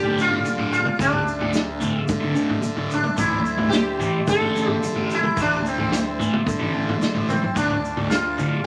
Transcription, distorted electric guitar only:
0.04 D2 A2 D3
0.18 D2 A2 D3
0.45 muted distorted electric guitar stroke
0.58 D2 A2 D3
0.85 muted distorted electric guitar stroke
0.99 D2 A2 D3
1.40 D2 A2 D3
1.53 muted distorted electric guitar stroke
1.80 D2 A2 D3
2.20 D2 A2 D3
2.34 D2 A2 D3
2.61 muted distorted electric guitar stroke
2.76 D2 A2 D3
3.04 muted distorted electric guitar stroke
3.17 A2 E3 A3
3.57 A2 E3 A3
3.71 muted distorted electric guitar stroke
3.99 A2 E3 A3
4.40 A2 E3 A3
4.54 A2 E3 A3
4.83 muted distorted electric guitar stroke
4.96 A2 E3 A3
5.24 muted distorted electric guitar stroke
5.38 A2 E3 A3
5.79 A2 E3 A3
5.93 muted distorted electric guitar stroke
6.19 A2 E3 A3
6.59 A2 E3 A3
6.74 A2 E3 A3
7.01 muted distorted electric guitar stroke
7.14 A2 E3 A3
7.41 muted distorted electric guitar stroke
7.54 D2 A2 D3
7.97 D2 A2 D3
8.10 muted distorted electric guitar stroke
8.39 D2 A2 D3

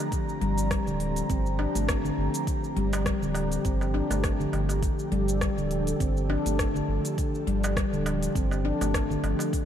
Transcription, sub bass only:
0.42 G1
0.87 D1
1.30 G1
1.75 G1
2.18 G1
2.77 G1
3.22 D1
3.65 G1
4.10 G1
4.53 G1
5.12 G1
5.58 D1
6.00 G1
6.46 G1
6.88 G1
7.47 G1
7.93 D1
8.35 G1
8.81 G1
9.23 G1

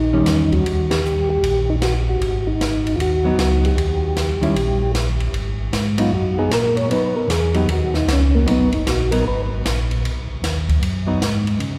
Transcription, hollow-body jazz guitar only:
0.13 D#3 G3 C#4
3.24 F#3 B3 D#4
4.41 D#3 G3 C#4 E4
5.98 F#3 B3 D#4
6.38 F#3 B3 D#4
6.91 F#3 B3 D#4
7.54 F#3 B3 D#4
8.46 F#3 B3 D#4
9.12 F#3 B3 D#4
11.07 F#3 B3 D#4

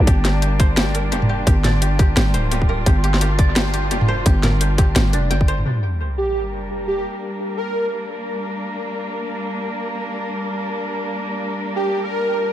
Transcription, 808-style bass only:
0.07 G1
1.12 F1
1.47 G1
2.17 G1
2.34 D1
2.86 G1
3.91 F1
4.26 G1
4.96 G1
5.13 F1
5.31 G1

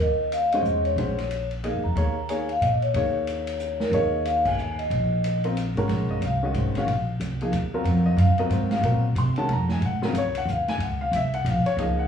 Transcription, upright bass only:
0.00 D#2
0.63 E2
0.96 A#1
1.74 D#2
1.85 E2
1.96 D#2
2.61 A#2
2.94 D#2
3.91 D#2
4.90 A#1
5.75 G#1
5.88 A#1
6.09 muted upright bass stroke
6.21 C2
6.54 G#1
6.87 A#1
7.20 C2
7.52 D#2
7.84 F2
8.17 F#2
8.36 muted upright bass stroke
8.50 G#2
8.83 A#2
9.15 C3
9.49 F2
9.81 G#2
10.02 muted upright bass stroke
10.13 C#2
10.45 D#2
10.78 C#2
11.12 C2
11.45 A#1
11.65 muted upright bass stroke
11.77 C#2

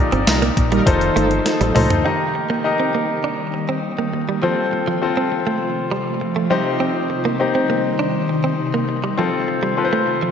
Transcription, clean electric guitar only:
0.12 C4
0.42 A#3
0.57 muted clean electric guitar stroke
0.72 G3
1.16 A3
1.46 muted clean electric guitar stroke
1.61 G3
1.76 A3
2.06 D#4
2.35 muted clean electric guitar stroke
2.50 A#3
2.65 muted clean electric guitar stroke
2.80 C4
2.95 A#3
3.24 D4
3.54 muted clean electric guitar stroke
3.69 C4
3.99 A#3
4.13 muted clean electric guitar stroke
4.29 G3
4.43 F3
4.73 muted clean electric guitar stroke
4.88 F3
5.17 C4
5.32 muted clean electric guitar stroke
5.47 A3
5.91 G3
6.21 muted clean electric guitar stroke
6.36 A3
6.51 G3
6.80 C4
7.10 muted clean electric guitar stroke
7.25 A#3
7.40 muted clean electric guitar stroke
7.55 C4
7.70 A#3
7.99 D4
8.29 muted clean electric guitar stroke
8.44 C4
8.74 A#3
8.89 muted clean electric guitar stroke
9.04 G3
9.19 F3
9.48 muted clean electric guitar stroke
9.63 G3
9.93 A3
10.08 muted clean electric guitar stroke
10.23 F3

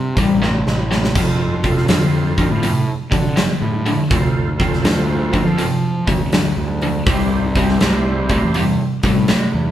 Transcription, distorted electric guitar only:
Already playing: C3 G3
0.17 C3 G3
0.42 C3 A3
0.91 C3 A3
1.16 F2 C3
1.64 F2 C3
1.89 F2 D3
2.38 F2 D3
2.63 F2 C3
3.11 F2 C3
3.36 F2 D3
3.86 F2 D3
4.11 F2 C3
4.60 F2 C3
4.85 F2 D3
5.33 F2 D3
5.58 F2 C3
6.08 F2 C3
6.33 F2 D3
6.82 F2 D3
7.07 C3 G3
7.56 C3 G3
7.81 C3 A3
8.29 C3 A3
8.55 C3 G3
9.03 C3 G3
9.28 C3 A3

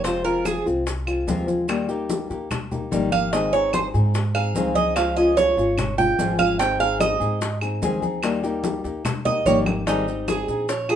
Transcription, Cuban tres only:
0.04 C5
0.24 A#4
0.46 G#4
3.12 F5
3.33 D#5
3.53 C#5
3.74 C5
4.35 F5
4.75 D#5
4.96 F5
5.17 D#5
5.37 C#5
5.98 G5
6.39 F5
6.59 G5
6.80 F5
7.00 D#5
9.25 D#5
9.46 C#5
9.87 D#4
10.28 G#4
10.69 C#5
10.90 G#4

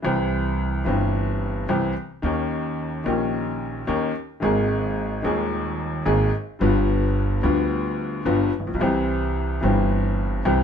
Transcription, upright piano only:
0.02 C2 C3 E3 G3 C4
0.06 G4
0.85 G1 G2 E3 G3 C4 G4
1.69 C2 C3 E3 G3 C4 G4
2.22 D#2 D#3 A#3 C#4 G4
3.04 A#1 A#2 D#3 A#3 C#4 G4
3.87 D#2 D#3 A#3 C#4 G4
4.40 G#1 G#2 D#3 G#3 A#3 G#4
5.22 D#1 D#2 D#3 G#3 A#3 G#4
6.05 G#1 G#2 D#3 G#3 A#3 G#4
6.59 G1 G2 D3 G3 B3 F4
7.41 D2 D3 G3 B3 F4
8.25 G1 G2 D3 G3 B3 F4
8.60 A1
8.67 A#1
8.75 B1
8.79 C2 C3 E3 G3 C4 G4
9.61 G1 G2 E3 G3 C4 G4
10.45 C2 C3 E3 G3 C4 G4

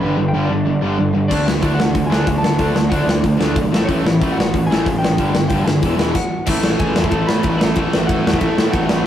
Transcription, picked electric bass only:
0.02 G1
0.18 G1
0.33 G1
0.49 G1
0.66 G1
0.83 G1
1.00 G1
1.15 G1
1.31 D2
1.48 D2
1.62 D2
1.81 D2
1.95 D2
2.13 D2
2.27 D2
2.46 D2
2.59 D2
2.75 D2
2.92 D2
3.05 D2
3.25 D2
3.39 D2
3.57 B1
3.71 A1
3.89 A1
4.04 A1
4.22 A1
4.39 A1
4.54 A1
4.70 A1
4.86 A1
5.03 A1
5.19 G1
5.35 G1
5.51 G1
5.66 G1
5.84 E1
5.98 E1
6.48 A1
6.64 A1
6.80 A1
6.98 E2
7.13 A1
7.29 A2
7.45 A1
7.63 A1
7.76 A1
7.95 A1
8.11 A1
8.26 E2
8.41 A1
8.58 A2
8.74 A1
8.91 A1

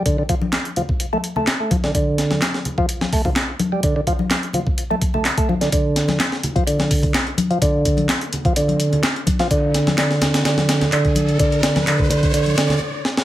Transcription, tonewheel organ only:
0.06 D3
0.18 D3
0.29 F3
0.77 F3
1.13 A3
1.37 A3
1.60 A3
1.71 F3
1.84 D3
1.95 D3
2.78 F3
3.13 A3
3.25 F3
3.72 G3
3.84 D3
3.96 D3
4.07 F3
4.54 F3
4.91 A3
5.14 A3
5.38 A3
5.49 F3
5.61 D3
5.72 D3
6.56 F3
6.67 D3
7.51 F3
7.62 D3
8.46 F3
8.56 D3
9.40 F3
9.51 D3
9.98 D3
10.45 D3
10.93 D3
11.40 D3
11.63 D3
11.87 D3
12.10 D3
12.34 D3
12.57 D3

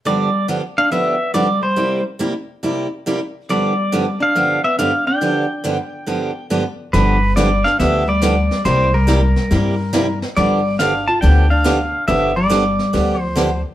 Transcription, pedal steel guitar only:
0.07 D5
0.78 F5
0.92 E5
1.34 D5
1.63 C5
3.50 D5
4.23 F5
4.64 E5
4.79 F5
5.07 G5
6.93 B4
7.36 D5
7.64 F5
7.80 E5
8.09 D5
8.65 C5
8.94 A#4
10.37 D5
10.79 F5
11.08 A5
11.21 G5
11.50 F5
12.08 E5
12.36 D5
13.21 C5

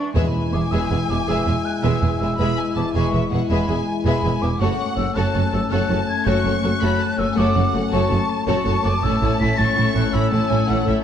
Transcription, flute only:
Already playing: C#6
0.16 B5
0.53 D6
0.71 E6
1.10 D6
1.29 E6
1.65 F#6
1.83 E6
2.19 E6
2.76 D6
2.95 C#6
3.50 B5
3.87 G#5
4.05 B5
4.42 D6
4.60 C#6
4.97 E6
5.15 F#6
5.53 E6
5.71 F#6
6.08 G#6
6.27 F#6
6.64 F#6
7.19 E6
7.38 D6
7.93 C#6
8.29 A5
8.47 C#6
8.84 D6
9.03 E6
9.40 B6
9.58 A6
9.95 F#6
10.13 E6

